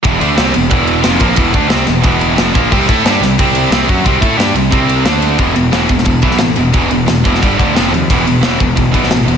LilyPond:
<<
  \new Staff \with { instrumentName = "Distorted electric guitar" } { \clef bass \time 4/4 \key e \minor \tempo 4 = 179 <e, b, e>8 <d a d'>8 <c g c'>8 <e, b,>8 <e, b, e>4 <f, c f>8 <ais, f ais>8 | <e, b, e>8 <d a d'>8 <c g c'>8 <e, b,>8 <e, b, e>4 <f, c f>8 <ais, f ais>8 | <c g c'>8 <a e' a'>8 <g d' g'>8 <c g>8 <c g c'>4 <c g c'>8 <fis cis' fis'>8 | <c g c'>8 <a e' a'>8 <g d' g'>8 <c g>8 <c g c'>4 <d a d'>4 |
<e, b, e>8 <e, b,>8 <e, b, e>8 <e, b,>8 <e, b,>8 <e, b, e>8 <e, b,>8 <e, b,>8 | <e, b, e>8 <e, b,>8 <e, b,>8 <e, b, e>8 <g, d g>8 <g, d g>8 <f, c f>8 <f, c>8 | <e, b, e>8 <e, b,>8 <e, b, e>8 <e, b,>8 <e, b,>8 <e, b, e>8 <e, b,>8 <e, b,>8 | }
  \new Staff \with { instrumentName = "Distorted electric guitar" } { \clef bass \time 4/4 \key e \minor <e, b, e>8 <d a d'>8 <c g c'>8 <e, b,>8 <e, b, e>4 <f, c f>8 <ais, f ais>8 | <e, b, e>8 <d a d'>8 <c g c'>8 <e, b,>8 <e, b, e>4 <f, c f>8 <ais, f ais>8 | <c g c'>8 <a e' a'>8 <g d' g'>8 <c g>8 <c g c'>4 <c g c'>8 <fis cis' fis'>8 | <c g c'>8 <a e' a'>8 <g d' g'>8 <c g>8 <c g c'>4 <d a d'>4 |
<e, b, e>8 <e, b,>8 <e, b, e>8 <e, b,>8 <e, b,>8 <e, b, e>8 <e, b,>8 <e, b,>8 | <e, b, e>8 <e, b,>8 <e, b,>8 <e, b, e>8 <g, d g>8 <g, d g>8 <f, c f>8 <f, c>8 | <e, b, e>8 <e, b,>8 <e, b, e>8 <e, b,>8 <e, b,>8 <e, b, e>8 <e, b,>8 <e, b,>8 | }
  \new Staff \with { instrumentName = "Picked electric bass" } { \clef bass \time 4/4 \key e \minor e,,8 d,8 c,8 e,,8 e,,4 f,,8 ais,,8 | e,,8 d,8 c,8 e,,8 e,,4 f,,8 ais,,8 | c,8 a,8 g,8 c,8 c,4 c,8 fis,8 | c,8 a,8 g,8 c,8 c,4 d,4 |
e,,8 e,,8 e,,8 e,,8 e,,8 b,,8 a,,8 e,,8 | e,,8 e,,8 e,,8 e,,8 g,,8 d,8 f,,8 dis,8 | e,,8 e,,8 e,,8 e,,8 e,,8 b,,8 a,,8 e,,8 | }
  \new DrumStaff \with { instrumentName = "Drums" } \drummode { \time 4/4 <bd cymr>8 cymr8 <cymr sn>8 cymr8 <bd cymr>8 cymr8 <cymr sn>8 <bd cymr>8 | <bd cymr>8 <bd cymr>8 <cymr sn>8 <cymr sn>8 <bd cymr>8 cymr8 <cymr sn>8 <bd cymr>8 | <cymc bd>8 <bd cymr>8 <cymr sn>8 <cymr sn>8 <bd cymr>8 cymr8 <cymr sn>8 <bd cymr>8 | <bd cymr>8 <bd cymr>8 <cymr sn>8 cymr8 <bd cymr>8 cymr8 <cymr sn>8 cymr8 |
<bd cymr>8 cymr8 <cymr sn>8 <bd cymr>16 sn16 <bd cymr>8 <bd cymr>16 sn16 <cymr sn>8 cymr8 | <bd cymr>8 cymr8 <cymr sn>8 <bd cymr>16 sn16 <bd cymr>8 <bd cymr>8 <cymr sn>8 cymr8 | <bd cymr>8 cymr8 <cymr sn>8 <bd cymr>8 <bd cymr>8 <bd cymr>16 sn16 <cymr sn>8 cymr8 | }
>>